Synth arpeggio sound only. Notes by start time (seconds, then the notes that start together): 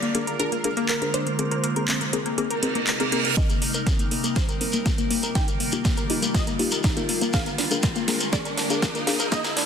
0.02 A#3
0.15 A#3
0.27 A#4
0.39 D4
0.52 A#3
0.64 A#3
0.77 A#3
0.89 A#3
1.02 A#4
1.14 D4
1.26 A#3
1.39 A#3
1.51 A#3
1.64 A#3
1.76 A#4
1.88 C4
2.01 A#3
2.13 A#3
2.26 A#3
2.38 A#3
2.50 A#4
2.63 C4
2.75 A#3
2.87 A#3
3.00 A#3
3.12 A#3
3.25 A#4
3.37 A#3
3.50 A#3
3.62 A#3
3.74 A#4
3.87 C4
3.99 A#3
4.11 A#3
4.24 A#3
4.36 A#3
4.49 A#4
4.61 C4
4.73 A#3
4.86 A#3
4.98 A#3
5.10 A#3
5.23 A#4
5.35 D#4
5.48 A#3
5.60 A#3
5.73 A#3
5.85 A#3
5.97 A#4
6.10 D#4
6.22 A#3
6.34 A#3
6.47 A#3
6.59 A#3
6.72 A#4
6.84 D#4
6.97 A#3
7.09 A#3
7.22 A#3
7.46 A#4
7.58 D4
7.71 A#3
7.83 A#3
7.96 A#3
8.08 A#3
8.21 A#4
8.33 A#3
8.45 A#4
8.58 D4
8.70 A#3
8.82 A#3
8.95 A#3
9.07 A#3
9.20 A#4
9.32 A#3
9.44 A#4
9.57 D4